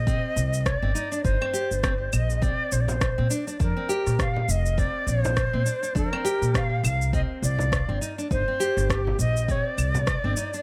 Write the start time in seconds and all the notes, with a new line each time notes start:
Already playing: A#1 D#5
0.07 C4, kick, cabasa
0.36 C2, cabasa
0.53 cabasa
0.60 D#5
0.66 C#5, kick, cross-stick, cabasa
0.77 D5
0.82 G1 C4
0.95 D#4, cabasa
1.12 D4, cabasa
1.23 G1 D#4 C5, kick, cabasa
1.41 C4, cross-stick, claves
1.53 G4, cabasa
1.71 G1, cabasa
1.83 C4, kick, cross-stick, cabasa
2.12 A#1 D#5, cabasa, claves
2.30 cabasa
2.42 C4 D5, kick, cabasa
2.72 A#1 C5, cabasa
2.80 D5
2.88 C5, frame drum, cabasa
3.01 kick, cross-stick, cabasa
3.18 A#2 C4
3.30 D4, cabasa
3.47 D4, cabasa
3.60 F2 D4 A#4, kick, cabasa
3.77 C4
3.89 G4, cabasa
4.06 A#2, cross-stick, cabasa
4.19 F5, kick, cross-stick, cabasa
4.36 frame drum
4.48 F1 D#5, cabasa
4.66 cabasa
4.77 C4 D5, kick, cabasa
5.07 A#1 C5, cabasa
5.25 frame drum, cabasa
5.37 kick, cross-stick, cabasa
5.53 A#2 C4
5.66 D4, cabasa
5.83 D4, cabasa
5.95 F2 D4 A#4, kick, cabasa
6.12 C4, cross-stick, claves
6.25 G4, cabasa
6.42 A#2, cabasa
6.54 F5, kick, cross-stick, cabasa
6.84 C2 F5, cabasa, claves
7.02 cabasa
7.13 C4 D#5, kick, cabasa
7.42 C2 D5, cabasa
7.59 frame drum, cabasa
7.72 kick, cross-stick, cabasa
7.89 G1 C4
8.01 D#4, cabasa
8.18 D4, cabasa
8.31 G1 D#4 C5, kick, cabasa
8.48 C4
8.60 G4, cabasa
8.77 G1, cross-stick, cabasa
8.90 G4, kick, cross-stick, cabasa
9.07 frame drum
9.19 A#1 D#5, cabasa
9.37 cabasa
9.48 C4 C#5, kick, cabasa
9.66 D5
9.78 C2, cabasa, claves
9.94 frame drum, cabasa
10.07 kick, cross-stick, cabasa
10.24 G1 C4
10.37 D#4, cabasa
10.54 D4, cabasa